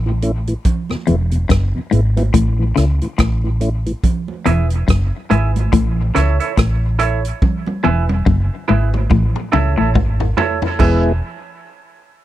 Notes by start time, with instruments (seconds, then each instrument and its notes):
Already playing: fingered electric bass A1
0.06 tonewheel organ A2 E3
0.22 tonewheel organ A3 C#4 E4, closed hi-hat
0.47 tonewheel organ A2 E3, closed hi-hat
0.65 kick, closed hi-hat, low conga
0.90 tonewheel organ E2 B2, cross-stick, high conga
1.07 fingered electric bass E1, clean electric guitar E2, tonewheel organ G#3 B3 E4, closed hi-hat, low conga
1.31 tonewheel organ E2 B2, closed hi-hat
1.49 fingered electric bass F#1, clean electric guitar F#2, kick, cross-stick, closed hi-hat
1.75 tonewheel organ E2 B2
1.91 fingered electric bass G#1, clean electric guitar G#2, tonewheel organ G#3 B3 E4, closed hi-hat
2.17 tonewheel organ B3 E4, closed hi-hat, high conga
2.34 fingered electric bass A1, clean electric guitar A2, kick, closed hi-hat, low conga
2.59 tonewheel organ A2 E3
2.76 fingered electric bass C#2, clean electric guitar C#3, tonewheel organ A3 C#4 E4, cross-stick, closed hi-hat
3.01 tonewheel organ A2 E3, closed hi-hat
3.18 fingered electric bass A1, clean electric guitar A2, kick, cross-stick, closed hi-hat
3.44 tonewheel organ A2 E3
3.61 tonewheel organ A3 C#4 E4, closed hi-hat
3.86 tonewheel organ A2 E3, closed hi-hat
4.04 kick, closed hi-hat, low conga
4.28 high conga
4.46 fingered electric bass E1, clean electric guitar E2 E4 G#4 B4 E5, closed hi-hat, low conga
4.70 closed hi-hat
4.88 fingered electric bass F#1, clean electric guitar F#2, kick, cross-stick, closed hi-hat
5.30 fingered electric bass G#1, clean electric guitar G#2 E4 G#4 B4 E5, closed hi-hat
5.56 closed hi-hat, high conga
5.72 fingered electric bass A1, clean electric guitar A2, kick, closed hi-hat, low conga
6.15 fingered electric bass C#2, clean electric guitar C#3 E4 A4 C#5 E5, cross-stick, closed hi-hat
6.40 clean electric guitar E4 A4 C#5 E5, closed hi-hat
6.57 fingered electric bass A1, clean electric guitar A2, kick, cross-stick, closed hi-hat
6.99 clean electric guitar E4 A4 C#5 E5, closed hi-hat
7.25 closed hi-hat
7.42 kick, high tom, low conga
7.66 high tom, high conga
7.83 fingered electric bass E1, clean electric guitar E2 E4 G#4 B4 E5, low conga
8.09 high tom
8.26 fingered electric bass F#1, clean electric guitar F#2, kick, mid tom
8.68 fingered electric bass G#1, clean electric guitar G#2 E4 G#4 B4 E5, mid tom
8.94 mid tom, high conga
9.10 fingered electric bass A1, clean electric guitar A2, kick, low conga
9.36 mid tom
9.52 fingered electric bass C#2, clean electric guitar C#3 E4 A4 C#5 E5, mid tom
9.77 fingered electric bass A1, clean electric guitar A2 E4 A4 C#5 E5
9.95 fingered electric bass G#1, clean electric guitar G#2, kick, floor tom, high conga
10.20 floor tom
10.37 clean electric guitar E4 A4 C#5 E5, floor tom, high conga
10.62 floor tom, high conga
10.79 fingered electric bass E1, tonewheel organ G#3 B3 E4, clean electric guitar E4 G#4 B4 E5, kick, crash, low conga